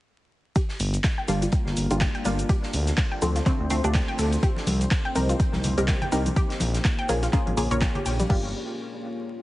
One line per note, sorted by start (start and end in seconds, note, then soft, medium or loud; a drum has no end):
0.56 2.47 G3 medium
0.56 2.47 A#3 medium
0.56 4.39 D4 medium
0.56 4.39 F4 medium
0.56 0.61 G4 loud
0.56 2.47 A#4 medium
0.56 kick loud
0.56 closed hi-hat medium
0.56 shaker soft
0.69 snare soft
0.80 0.98 G1 loud
0.80 closed hi-hat medium
0.80 open hi-hat loud
0.80 shaker medium
0.93 closed hi-hat soft
0.93 closed hi-hat medium
0.93 shaker soft
1.04 kick loud
1.04 snare loud
1.04 clap loud
1.04 closed hi-hat medium
1.04 shaker soft
1.18 1.28 G5 loud
1.28 1.46 G1 loud
1.28 1.87 G3 medium
1.28 1.87 A#3 medium
1.28 1.87 D4 medium
1.28 1.87 F4 medium
1.28 1.41 A#4 medium
1.28 closed hi-hat medium
1.28 open hi-hat medium
1.28 shaker medium
1.42 1.46 F4 medium
1.42 closed hi-hat medium
1.42 closed hi-hat soft
1.42 shaker soft
1.52 kick loud
1.52 closed hi-hat medium
1.52 shaker soft
1.66 1.74 G1 medium
1.66 snare soft
1.77 1.86 G1 medium
1.77 closed hi-hat medium
1.77 open hi-hat loud
1.77 shaker medium
1.90 2.06 G1 loud
1.90 2.23 G3 medium
1.90 2.23 A#3 medium
1.90 2.23 D4 medium
1.90 2.23 F4 medium
1.90 1.97 G4 medium
1.90 closed hi-hat soft
1.90 closed hi-hat medium
1.90 shaker soft
2.00 2.10 G5 medium
2.00 kick loud
2.00 snare loud
2.00 clap loud
2.00 closed hi-hat medium
2.00 shaker soft
2.15 2.25 G5 loud
2.15 closed hi-hat soft
2.25 2.43 G1 medium
2.25 2.42 G3 medium
2.25 2.42 A#3 medium
2.25 2.42 D4 medium
2.25 2.43 F4 medium
2.25 2.38 A#4 medium
2.25 closed hi-hat medium
2.25 open hi-hat medium
2.25 shaker medium
2.39 closed hi-hat medium
2.39 shaker soft
2.49 4.41 A3 medium
2.49 6.33 C4 medium
2.49 2.55 G4 loud
2.49 4.41 C5 medium
2.49 kick loud
2.49 closed hi-hat medium
2.49 shaker soft
2.63 snare medium
2.73 2.91 D2 loud
2.73 closed hi-hat medium
2.73 open hi-hat loud
2.73 shaker medium
2.87 snare soft
2.87 closed hi-hat medium
2.87 shaker soft
2.97 kick loud
2.97 snare loud
2.97 clap loud
2.97 closed hi-hat medium
2.97 shaker soft
3.11 3.21 G5 medium
3.22 3.40 D2 loud
3.22 3.39 D3 medium
3.22 3.39 F3 medium
3.22 3.39 A3 medium
3.22 3.39 C4 medium
3.22 3.35 A4 medium
3.22 closed hi-hat medium
3.22 open hi-hat medium
3.22 shaker medium
3.35 3.40 F4 medium
3.35 snare soft
3.35 closed hi-hat medium
3.35 shaker soft
3.46 3.68 D3 loud
3.46 3.68 F3 medium
3.46 3.68 A3 loud
3.46 3.68 C4 loud
3.46 kick loud
3.46 clap soft
3.46 closed hi-hat medium
3.46 shaker soft
3.60 3.67 D2 loud
3.70 3.80 D2 medium
3.70 3.81 D3 medium
3.70 3.81 F3 medium
3.70 3.81 A3 medium
3.70 3.81 C4 loud
3.70 closed hi-hat medium
3.70 open hi-hat loud
3.70 shaker medium
3.84 4.00 D2 loud
3.84 3.99 D3 medium
3.84 3.99 F3 medium
3.84 3.99 A3 medium
3.84 3.99 D4 loud
3.84 3.91 G4 medium
3.84 closed hi-hat medium
3.84 shaker soft
3.94 4.03 G5 medium
3.94 kick loud
3.94 snare loud
3.94 clap loud
3.94 closed hi-hat medium
3.94 shaker soft
4.08 4.18 G5 loud
4.08 closed hi-hat soft
4.19 4.37 D2 medium
4.19 4.32 A4 medium
4.19 open hi-hat medium
4.19 open hi-hat loud
4.19 shaker medium
4.33 closed hi-hat medium
4.33 shaker soft
4.43 8.26 A#3 medium
4.43 6.34 D#4 medium
4.43 4.48 G4 loud
4.43 6.34 G4 medium
4.43 6.34 C5 medium
4.43 kick loud
4.43 closed hi-hat medium
4.43 shaker soft
4.56 snare soft
4.56 muted conga medium
4.67 4.85 C2 loud
4.67 closed hi-hat medium
4.67 open hi-hat loud
4.67 high conga medium
4.67 shaker medium
4.81 closed hi-hat medium
4.81 closed hi-hat soft
4.81 shaker soft
4.91 kick loud
4.91 snare loud
4.91 clap loud
4.91 closed hi-hat medium
4.91 shaker soft
5.05 5.15 G5 loud
5.15 5.33 C2 loud
5.15 5.74 C4 medium
5.15 5.74 D#4 medium
5.15 5.74 G4 medium
5.15 5.29 A#4 medium
5.15 5.74 A#4 medium
5.15 closed hi-hat medium
5.15 open hi-hat medium
5.15 high conga medium
5.15 shaker medium
5.29 5.33 F4 medium
5.29 closed hi-hat soft
5.29 closed hi-hat medium
5.29 shaker soft
5.40 kick loud
5.40 closed hi-hat medium
5.40 shaker soft
5.53 5.61 C2 loud
5.53 snare soft
5.53 high conga medium
5.64 5.73 C2 medium
5.64 closed hi-hat medium
5.64 open hi-hat loud
5.64 low conga medium
5.64 shaker medium
5.77 5.93 C2 loud
5.77 6.10 C4 medium
5.77 6.10 D#4 medium
5.77 5.84 G4 medium
5.77 6.10 G4 medium
5.77 6.10 A#4 medium
5.77 closed hi-hat medium
5.77 closed hi-hat soft
5.77 low conga medium
5.77 shaker soft
5.88 5.97 G5 medium
5.88 kick loud
5.88 snare loud
5.88 clap loud
5.88 closed hi-hat medium
5.88 high conga medium
5.88 shaker soft
6.02 6.12 G5 loud
6.02 closed hi-hat soft
6.02 muted conga medium
6.02 low conga loud
6.12 6.30 C2 medium
6.12 6.29 C4 medium
6.12 6.29 D#4 medium
6.12 6.30 G4 medium
6.12 6.25 A#4 medium
6.12 6.30 A#4 loud
6.12 closed hi-hat medium
6.12 open hi-hat medium
6.12 shaker medium
6.26 closed hi-hat medium
6.26 high conga medium
6.26 shaker soft
6.36 8.28 C#4 medium
6.36 8.28 F4 medium
6.36 6.42 G4 loud
6.36 8.28 G#4 medium
6.36 8.28 C#5 medium
6.36 kick loud
6.36 closed hi-hat medium
6.36 shaker soft
6.50 snare medium
6.50 closed hi-hat soft
6.60 6.78 A#1 loud
6.60 closed hi-hat medium
6.60 open hi-hat loud
6.60 high conga loud
6.60 shaker medium
6.74 snare soft
6.74 closed hi-hat medium
6.74 shaker soft
6.84 kick loud
6.84 snare loud
6.84 clap loud
6.84 closed hi-hat medium
6.84 shaker soft
6.99 7.08 G5 loud
6.99 closed hi-hat soft
7.09 7.27 A#1 loud
7.09 7.26 A#3 medium
7.09 7.26 C#4 medium
7.09 7.26 F4 medium
7.09 7.26 G#4 loud
7.09 7.22 A#4 medium
7.09 closed hi-hat medium
7.09 open hi-hat loud
7.09 high conga medium
7.09 shaker medium
7.23 7.27 F4 medium
7.23 snare soft
7.23 closed hi-hat medium
7.23 shaker soft
7.33 7.55 A#3 loud
7.33 7.55 C#4 medium
7.33 7.55 F4 medium
7.33 7.55 G#4 loud
7.33 kick loud
7.33 clap soft
7.33 closed hi-hat medium
7.33 shaker soft
7.47 7.54 G#1 medium
7.47 closed hi-hat soft
7.47 high conga loud
7.57 7.67 A#1 loud
7.57 7.68 A#3 medium
7.57 7.68 C#4 medium
7.57 7.68 F4 medium
7.57 7.68 G#4 loud
7.57 closed hi-hat medium
7.57 open hi-hat loud
7.57 low conga medium
7.57 shaker medium
7.71 7.87 A#1 loud
7.71 7.86 A#3 medium
7.71 7.86 C#4 medium
7.71 7.86 F4 medium
7.71 7.86 A#4 loud
7.71 7.78 C#5 loud
7.71 closed hi-hat soft
7.71 low conga medium
7.71 shaker soft
7.81 7.87 G5 medium
7.81 kick loud
7.81 snare loud
7.81 clap loud
7.81 closed hi-hat loud
7.81 closed hi-hat medium
7.81 high conga medium
7.81 shaker soft
7.95 8.02 G4 medium
7.95 closed hi-hat soft
7.95 muted conga soft
7.95 low conga medium
8.06 8.24 A#1 loud
8.06 8.19 G5 medium
8.06 open hi-hat medium
8.06 open hi-hat loud
8.06 shaker medium
8.20 8.24 G3 medium
8.20 closed hi-hat soft
8.20 high conga medium
8.20 shaker soft
8.29 8.52 G1 medium
8.29 8.48 G3 medium
8.29 8.48 A#3 medium
8.29 8.49 D4 medium
8.29 8.49 F4 medium
8.29 8.52 G4 medium
8.29 kick loud
8.29 crash medium